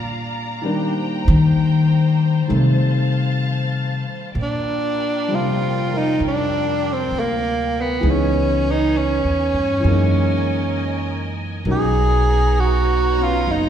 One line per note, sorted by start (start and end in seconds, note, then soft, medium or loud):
0.00 1.25 A#2 soft
0.00 0.64 F3 soft
0.00 0.62 G3 soft
0.00 0.65 C4 soft
0.00 0.65 D4 soft
0.00 0.60 F4 medium
0.00 0.62 D5 medium
0.00 0.62 F5 medium
0.00 2.45 A#5 medium
0.62 2.46 D#3 soft
0.62 2.47 G3 soft
0.62 2.49 A#3 soft
0.62 4.32 C5 medium
0.62 2.47 G5 medium
0.66 2.50 D4 soft
1.28 2.45 D#3 medium
2.48 4.03 C3 medium
2.48 4.35 D#3 soft
2.48 4.35 G3 soft
2.48 4.35 A3 soft
2.48 4.35 C4 soft
2.48 4.33 F5 medium
2.48 4.33 A5 medium
4.35 6.16 A#2 medium
4.35 8.01 F4 medium
4.35 8.01 A#4 medium
4.35 8.00 D5 medium
4.35 8.01 G5 medium
4.43 5.37 D4 medium
5.28 5.89 F3 soft
5.28 8.04 G3 soft
5.32 8.05 C3 soft
5.32 5.99 F4 medium
5.91 8.03 F3 soft
5.91 8.04 A#4 soft
5.97 6.23 D#4 medium
6.20 7.08 F2 medium
6.28 6.94 D4 medium
6.93 7.21 C4 medium
7.11 7.99 D2 medium
7.19 7.82 A#3 medium
7.81 8.12 B3 medium
8.01 9.20 C#2 medium
8.01 9.78 E3 soft
8.01 9.85 B3 soft
8.01 9.85 G#4 soft
8.01 9.83 B4 medium
8.01 9.84 C#5 medium
8.01 11.63 G#5 medium
8.06 9.86 D#4 soft
8.10 8.73 C#4 medium
8.71 8.99 D#4 medium
8.98 11.40 C#4 medium
9.24 9.53 E2 soft
9.54 9.82 G2 medium
9.80 11.64 E3 soft
9.84 11.62 F#2 medium
9.84 11.66 G#3 soft
9.84 11.68 A#3 soft
9.84 11.66 A#4 medium
9.84 11.66 D#5 medium
9.91 11.66 D#4 soft
11.65 13.44 B1 medium
11.65 13.69 F#3 soft
11.65 13.69 B3 medium
11.65 13.19 C#4 soft
11.65 13.69 D#4 medium
11.65 13.69 D#4 soft
11.65 13.69 A#4 soft
11.65 13.69 C#5 medium
11.65 13.69 A#5 medium
11.71 12.62 G#4 medium
12.60 13.24 F#4 medium
13.17 13.69 B3 soft
13.17 13.69 C#4 soft
13.23 13.53 F4 medium
13.47 13.69 F#1 medium
13.51 13.69 D#4 medium